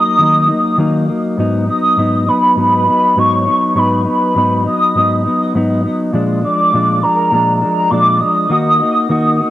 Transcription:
Already playing: clean electric guitar F#3 A#3 D#4, soft synth lead D#6
0.18 clean electric guitar D#3 F#3 A#3 D#4
0.48 clean electric guitar A#3 D#4
0.52 clean electric guitar F#3
0.77 clean electric guitar D#3 F#3 A#3 D#4
1.08 clean electric guitar F#3 A#3 D#4
1.37 clean electric guitar G#2 F#3 B3 D#4
1.67 clean electric guitar F#3 B3 D#4, soft synth lead D#6
1.97 clean electric guitar G#2 F#3 B3 D#4
2.27 clean electric guitar F#3 B3 D#4, soft synth lead B5
2.56 clean electric guitar G#2 F#3 B3
2.60 clean electric guitar D#4, soft synth lead B5
2.86 clean electric guitar F#3 B3 D#4
3.16 clean electric guitar G#2 F#3 B3 D#4, soft synth lead C#6
3.46 clean electric guitar B3 D#4
3.50 clean electric guitar F#3
3.74 clean electric guitar G#2 F#3 B3 D#4
3.79 soft synth lead B5
4.05 clean electric guitar F#3 B3 D#4, soft synth lead B5
4.35 clean electric guitar G#2 F#3 B3 D#4
4.64 clean electric guitar F#3 B3 D#4, soft synth lead D#6
4.95 clean electric guitar G#2 F#3 B3
4.99 clean electric guitar D#4
5.24 clean electric guitar F#3 B3 D#4
5.54 clean electric guitar G#2 F#3 B3 D#4
5.83 clean electric guitar B3 D#4
5.88 clean electric guitar F#3
6.13 clean electric guitar A#2 F3 G#3 D4
6.42 clean electric guitar F3 G#3 D4, soft synth lead D6
6.73 clean electric guitar A#2 F3 G#3 D4
7.02 clean electric guitar F3 G#3 D4, soft synth lead A#5
7.31 clean electric guitar A#2 F3 G#3 D4
7.61 clean electric guitar G#3 D4
7.65 clean electric guitar F3
7.76 soft synth lead A#5
7.91 clean electric guitar A#2 F3 G#3 D4, soft synth lead D6
8.20 clean electric guitar F3 G#3 D4, soft synth lead D#6
8.49 clean electric guitar D#3 A#3 D#4 F#4
8.79 clean electric guitar D#4 F#4
8.84 clean electric guitar A#3
9.09 clean electric guitar D#3 A#3 D#4 F#4
9.39 clean electric guitar D#4 F#4
9.44 clean electric guitar A#3

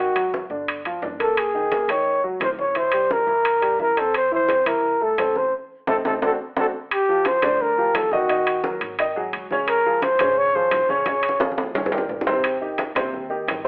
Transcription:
Already playing: upright bass G#1, trumpet F#4
0.00 grand piano D#3 D#4
0.15 grand piano F#3 F#4, high conga, high timbale
0.34 high conga
0.50 upright bass G1, grand piano D3 D4, high conga
0.68 high conga, high timbale
0.85 grand piano F3 F4, high conga, high timbale
1.02 upright bass F#1, grand piano D4 D5, high conga, low timbale
1.20 grand piano A#3 A#4, trumpet A4, high conga, high timbale
1.37 trumpet G#4, high conga, high timbale
1.55 grand piano D#3 D#4, high conga
1.72 grand piano A#3 A#4, high conga, high timbale
1.88 upright bass C#2, grand piano D#3 D#4, trumpet C#5, high conga, high timbale
2.07 high conga
2.24 grand piano F#3 F#4, high conga
2.40 upright bass C2, grand piano A#3 A#4, trumpet C5, high conga, high timbale, low timbale
2.59 trumpet C#5, high conga
2.75 grand piano E3 E4, trumpet C5, high conga, high timbale
2.92 grand piano G3 G4, high conga, high timbale
3.11 trumpet A#4, high conga
3.27 upright bass G2, grand piano E3 E4, high conga
3.45 high conga, high timbale
3.62 grand piano G3 G4, high conga, high timbale
3.79 upright bass F2, grand piano E4 E5, trumpet A#4, high conga
3.97 grand piano C4 C5, trumpet A4, high timbale
4.14 trumpet C5, high conga, high timbale
4.31 grand piano E3 E4, trumpet C5, high conga
4.48 grand piano C4 C5, high conga, high timbale
4.66 upright bass C2, grand piano E3 E4, trumpet A#4, high conga, high timbale
4.83 high conga
5.01 grand piano A3 A4, trumpet A4, high conga
5.18 upright bass A1, grand piano C4 C5, high conga, high timbale, low timbale
5.35 trumpet C5, high conga
5.87 upright bass A1, grand piano A3 C4 D#4, trumpet A4, high conga, high timbale
6.05 upright bass A1, grand piano A3 C4 D#4, trumpet A4, high conga, high timbale
6.22 upright bass D2, grand piano C4 D4 F#4, trumpet A4, high conga, high timbale
6.57 upright bass D2, grand piano C4 D4 F#4, trumpet A4, high conga, high timbale
6.91 trumpet G4, high conga, high timbale
7.09 grand piano F3 F4 G4, high conga
7.25 trumpet C5, high conga, high timbale
7.42 upright bass D2, grand piano D3 D4 D5, high conga, low conga, high timbale
7.60 trumpet A#4, high conga, low conga
7.78 grand piano F3 F4 G4, high conga
7.94 upright bass D#2, trumpet A4, high conga, high timbale, low timbale
8.11 grand piano D#3 D#4 D#5, trumpet F#4, high conga
8.29 grand piano D#3 D#4 D#5, high timbale
8.47 high conga, high timbale
8.64 grand piano F#3 F#4 A#4, high conga
8.81 upright bass G#1, high conga, high timbale
8.98 grand piano D#3 D#4 D#5, high conga, high timbale
9.16 grand piano F#3 F#4 G#4, high conga
9.33 upright bass C#2, high conga, high timbale
9.51 grand piano C#3 C#4 C#5, high conga
9.68 trumpet A#4, high conga, high timbale
9.85 grand piano F3 F4 G#4, high conga
10.02 trumpet C5, high conga, high timbale
10.19 upright bass G#1, grand piano C#3 C#4 C#5, high conga, low conga, high timbale
10.37 trumpet C#5, high conga
10.55 grand piano F3 F4 G#4, trumpet C5, high conga
10.71 upright bass A#1, high conga, high timbale, low timbale
10.89 grand piano C#3 C#4 C#5, trumpet C#5, high conga
11.06 grand piano C#3 C#4 C#5, high conga, high timbale
11.23 high timbale
11.29 high conga
11.40 grand piano F3 F4 G#4, high conga, high timbale
11.52 high conga
11.58 upright bass D#2, high timbale
11.63 high conga
11.74 grand piano C#3 C#4 C#5, low conga, low timbale
11.86 low conga
11.92 grand piano G3 G4 A#4, low timbale
11.98 low conga
12.09 upright bass G#1, low conga
12.21 low conga
12.27 grand piano C3 C4 C5, low timbale
12.33 low conga
12.44 high conga, high timbale
12.61 grand piano D#3 D#4 G4, high conga
12.78 high conga, high timbale
12.95 upright bass D#2, grand piano C3 C4 C5, high conga, low conga, high timbale
13.13 high conga, low conga
13.30 grand piano D#3 D#4 G4, high conga
13.47 upright bass G#1, high conga, high timbale, low timbale
13.64 grand piano C3

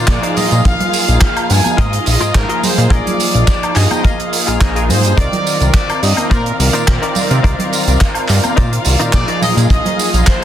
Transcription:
Already playing: violin section F4 F5
0.07 analog synth bass A#2, analog polysynth F3 A#3 D#4 G#4, trumpet section D5, kick, clap, closed hi-hat, tambourine
0.22 clean electric guitar D#4 A#4 C5 D5, closed hi-hat
0.36 analog synth bass A#2, clean electric guitar F4 G#4 A#4 D#5, trumpet section D#5, open hi-hat, tambourine, low conga
0.51 analog synth bass A#2, closed hi-hat, tambourine
0.65 analog synth bass A#1, analog polysynth F3 A#3, trumpet section F5, kick, closed hi-hat, tambourine
0.80 closed hi-hat, low conga
0.93 open hi-hat, tambourine
1.08 analog synth bass A#1, analog polysynth F3 A#3 D#4 G#4, closed hi-hat, tambourine
1.21 trumpet section F5, kick, clap, closed hi-hat, tambourine
1.37 closed hi-hat, high woodblock
1.50 analog synth bass G2, trumpet section G#5, open hi-hat, tambourine
1.64 closed hi-hat, tambourine, high conga, high woodblock
1.77 analog synth bass G#2, clean electric guitar F4 G#4 A#4 D#5, trumpet section D#5, kick, closed hi-hat
1.93 closed hi-hat
2.06 analog synth bass A#1, trumpet section D#5, muted clean electric guitar stroke, open hi-hat, tambourine
2.20 analog synth bass G#2, clean electric guitar F4 G#4 A#4 D#5, closed hi-hat, tambourine
2.34 analog synth bass G#2, analog polysynth F3 A#3 D#4 G#4, trumpet section A#4, kick, clap, closed hi-hat, tambourine
2.49 clean electric guitar F4 G#4 A#4 D#5, closed hi-hat
2.63 trumpet section C5, open hi-hat, tambourine, low conga
2.78 analog synth bass A#2, closed hi-hat, tambourine
2.90 analog synth bass A#1, clean electric guitar F4 G#4 A#4 D#5, trumpet section D5, kick, closed hi-hat, tambourine
3.07 closed hi-hat, low conga
3.20 open hi-hat, tambourine
3.34 analog synth bass A#1, analog polysynth F3 A#3 D#4 G#4, closed hi-hat, tambourine
3.48 kick, clap, closed hi-hat, tambourine
3.63 closed hi-hat, high woodblock
3.75 analog synth bass G2, trumpet section D#5, clean electric guitar G#5, clap, open hi-hat, tambourine
3.91 clean electric guitar G5, closed hi-hat, tambourine, high conga, high woodblock
4.04 clean electric guitar F4 G#4 A#4 D#5 F5, kick, closed hi-hat, tambourine
4.20 closed hi-hat
4.32 muted clean electric guitar stroke, open hi-hat, tambourine
4.47 analog synth bass A#1, clean electric guitar F4 G#4 A#4 F5, closed hi-hat, tambourine
4.61 analog synth bass A#1, analog polysynth A#3 D#4 G#4, trumpet section A#4, clean electric guitar D#5, kick, clap, closed hi-hat, tambourine
4.75 clean electric guitar F4 G#4 A#4 D#5, closed hi-hat
4.89 analog synth bass G#2, trumpet section C5, clean electric guitar C5, open hi-hat, tambourine, low conga
5.04 analog synth bass G2, closed hi-hat, tambourine
5.17 analog synth bass C2, analog polysynth D#3 C4 A#4 D5, clean electric guitar D#4 A#4 C5 D5, violin section F4 F5, trumpet section D5, kick, closed hi-hat, tambourine
5.32 closed hi-hat, low conga
5.47 open hi-hat, tambourine
5.60 analog synth bass C2, analog polysynth D#3 C4 A#4 D5, closed hi-hat, tambourine
5.74 trumpet section D5, kick, clap, closed hi-hat, tambourine
5.90 closed hi-hat, high woodblock
6.03 analog synth bass G2, trumpet section D#5, open hi-hat, tambourine
6.17 closed hi-hat, tambourine, high conga, high woodblock
6.30 analog synth bass A#2, clean electric guitar D#4 A#4 C5 D5, trumpet section A#4, kick, closed hi-hat, tambourine
6.46 closed hi-hat
6.58 analog synth bass C2, trumpet section A#4, muted clean electric guitar stroke, open hi-hat, tambourine
6.73 analog synth bass A#2, clean electric guitar D#4 A#4 C5 D5, closed hi-hat, tambourine
6.87 analog synth bass A#2, analog polysynth D#3 C4 A#4 D5, kick, clap, closed hi-hat
7.02 clean electric guitar D#4 A#4 C5 D5, closed hi-hat
7.15 open hi-hat, tambourine, low conga
7.31 analog synth bass C3, closed hi-hat, tambourine
7.43 analog synth bass C2, analog polysynth D#3 C4 A#4 D5, clean electric guitar D#4 A#4 C5 D5, kick, closed hi-hat, tambourine
7.59 closed hi-hat, low conga
7.73 open hi-hat, tambourine
7.87 analog synth bass C2, analog polysynth D#3 C4 A#4 D5, closed hi-hat, tambourine
8.01 kick, clap, closed hi-hat, tambourine
8.14 closed hi-hat, high woodblock
8.28 analog synth bass G2, clap, open hi-hat, tambourine
8.43 closed hi-hat, tambourine, high conga, high woodblock
8.56 analog synth bass A#2, clean electric guitar D#4 A#4 C5 D5, kick, closed hi-hat, tambourine
8.73 closed hi-hat
8.85 analog synth bass C2, muted clean electric guitar stroke, open hi-hat, tambourine
9.00 analog synth bass A#2, clean electric guitar D#4 A#4 C5 D5, closed hi-hat, tambourine
9.13 analog synth bass A#2, analog polysynth F3 A#3 D#4 G#4, trumpet section D5, kick, clap, closed hi-hat, tambourine
9.28 clean electric guitar D#4 A#4 C5 D5, closed hi-hat
9.41 analog synth bass A#2, clean electric guitar F4 G#4 A#4 D#5, trumpet section D#5, open hi-hat, tambourine, low conga
9.57 analog synth bass A#2, closed hi-hat, tambourine
9.70 analog synth bass A#1, analog polysynth F3 A#3 D#4 G#4, trumpet section D#5, kick, closed hi-hat, tambourine
9.85 closed hi-hat, low conga
9.99 open hi-hat, tambourine
10.13 analog synth bass A#1, analog polysynth F3 A#3 D#4 G#4, closed hi-hat, tambourine
10.27 trumpet section C5, kick, clap, closed hi-hat, tambourine

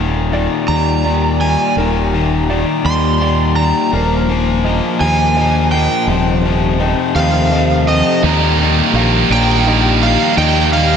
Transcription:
Already playing: fingered electric bass D#1, overdriven electric guitar D#2 A#2 D#3, clean electric guitar D#2, ambient pad D#3 G3 F4 D5, felt piano A#4
0.32 overdriven electric guitar D#2 A#2 D#3, clean electric guitar D#4, felt piano D5
0.68 fingered electric bass D#2, overdriven electric guitar D#2 A#2 D#3, clean electric guitar G3, electric slide guitar A#5
1.04 overdriven electric guitar D#2 A#2 D#3, clean electric guitar D#3, felt piano D5
1.41 overdriven electric guitar D#2 A#2 D#3, clean electric guitar G3, electric slide guitar G#5
1.76 fingered electric bass D#1, clean electric guitar D#2, overdriven electric guitar D#2 A#2 D#3, felt piano A#4
2.13 overdriven electric guitar D#2 A#2 D#3
2.49 overdriven electric guitar D#2 A#2 D#3, clean electric guitar D#4, felt piano D5
2.84 overdriven electric guitar D#2 A#2 D#3, fingered electric bass D#2, clean electric guitar G3, electric slide guitar C6
3.20 overdriven electric guitar D#2 A#2 D#3, clean electric guitar D#3, felt piano D5
3.56 overdriven electric guitar D#2 A#2 D#3, clean electric guitar G3, electric slide guitar A#5
3.92 fingered electric bass D#1, overdriven electric guitar A#2 F3 A#3, clean electric guitar A#2, ambient pad F3 A#3 D#5, felt piano A#4
3.96 ambient pad G#4
4.29 overdriven electric guitar A#2 F3 A#3
4.64 overdriven electric guitar A#2 F3 A#3, clean electric guitar F4, felt piano D#5
5.00 fingered electric bass D#2, overdriven electric guitar A#2 F3 A#3, clean electric guitar A#3, electric slide guitar G#5
5.36 overdriven electric guitar A#2 F3 A#3, clean electric guitar F3, felt piano D#5
5.72 overdriven electric guitar A#2 F3 A#3, clean electric guitar A#3, electric slide guitar G5
6.07 fingered electric bass D#1, clean electric guitar F2, overdriven electric guitar F2 C3 F3, ambient pad C4 A4, felt piano C5
6.44 overdriven electric guitar F2 C3 F3
6.79 overdriven electric guitar F2 C3 F3, clean electric guitar D#4, felt piano D#5
7.15 fingered electric bass D#2, overdriven electric guitar F2 C3 F3, clean electric guitar A3, electric slide guitar F5
7.51 overdriven electric guitar F2 C3 F3, clean electric guitar F3, felt piano D#5
7.87 overdriven electric guitar F2 C3 F3, clean electric guitar A3, electric slide guitar D#5
8.23 overdriven electric guitar D#2 A#2 D#3 G3 A#3 D#4, fingered electric bass D#2, ambient pad F3 D#4 G4, felt piano D#5
8.58 overdriven electric guitar D#3 G3 A#3 D#4
8.93 fingered electric bass A#1, overdriven electric guitar D#3 G3 A#3 D#4, felt piano F5
9.30 fingered electric bass A#1, overdriven electric guitar D#2 A#2 D#3 G3 A#3 D#4, electric slide guitar G5
9.65 overdriven electric guitar D#3 G3 A#3 D#4, felt piano D#5
10.02 distorted electric guitar D#3 G3 A#3 D#4, electric slide guitar F5
10.36 overdriven electric guitar D#2 A#2 D#3 G3 A#3 D#4, fingered electric bass D#2, ambient pad C5, felt piano D#5, electric slide guitar G5
10.72 overdriven electric guitar D#3 G3 A#3 D#4, electric slide guitar F5

